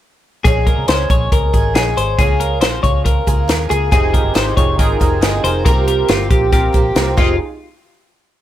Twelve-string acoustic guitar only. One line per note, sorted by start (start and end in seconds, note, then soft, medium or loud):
0.45 0.88 A#2 medium
0.45 0.87 F3 medium
0.45 0.89 G#3 medium
0.45 0.90 C#4 medium
0.45 0.91 G#4 medium
0.88 1.74 F3 medium
0.88 1.56 G#3 medium
0.88 1.55 C#4 medium
0.88 1.53 G#4 medium
1.53 1.74 G#3 soft
1.53 1.76 C#4 soft
1.53 1.75 G#4 medium
1.74 1.96 F3 medium
1.74 1.97 G#3 medium
1.74 1.97 C#4 medium
1.74 1.95 G#4 medium
1.97 2.19 G#3 soft
1.97 2.19 C#4 soft
1.97 2.18 G#4 medium
2.18 2.62 C#3 medium
2.18 2.61 F3 medium
2.18 2.62 A#3 medium
2.18 2.64 F4 medium
2.18 2.64 G#4 medium
2.62 3.47 F3 medium
2.62 3.28 A#3 medium
2.62 3.28 F4 medium
2.62 3.26 G#4 medium
3.27 3.48 A#3 soft
3.27 3.49 F4 soft
3.27 3.49 G#4 soft
3.48 3.70 F3 medium
3.48 3.71 A#3 medium
3.48 3.70 F4 medium
3.48 3.68 G#4 medium
3.69 3.93 A#3 medium
3.69 3.92 F4 medium
3.69 3.92 G#4 medium
3.91 4.35 F2 medium
3.91 4.36 C3 medium
3.91 4.33 D#3 medium
3.91 4.34 G#3 medium
3.91 4.36 C4 medium
3.91 4.36 G#4 medium
4.34 5.00 D#3 medium
4.34 5.00 G#3 medium
4.34 5.00 C4 medium
4.34 4.99 G#4 medium
5.00 5.20 D#3 soft
5.00 5.22 G#3 soft
5.00 5.22 C4 medium
5.00 5.22 G#4 medium
5.21 5.44 D#3 medium
5.21 5.44 G#3 medium
5.21 5.44 C4 medium
5.21 5.43 G#4 medium
5.44 5.66 D#3 soft
5.44 5.67 G#3 soft
5.44 5.66 C4 soft
5.44 5.66 G#4 soft
5.66 6.09 C3 medium
5.66 6.08 F3 medium
5.66 6.09 A#3 medium
5.66 6.10 C4 medium
5.66 6.10 G4 medium
6.08 6.76 F3 medium
6.08 6.75 A#3 medium
6.08 6.74 C4 medium
6.08 6.72 G4 medium
6.73 6.95 A#3 soft
6.73 6.96 C4 medium
6.73 6.95 G4 medium
6.95 7.17 F3 medium
6.95 7.18 A#3 medium
6.95 7.17 C4 medium
6.95 7.19 G4 medium
7.17 7.34 F2 medium
7.17 7.35 C3 medium
7.17 7.35 D#3 medium
7.17 7.35 G#3 medium
7.17 7.35 C4 medium
7.17 7.36 F4 medium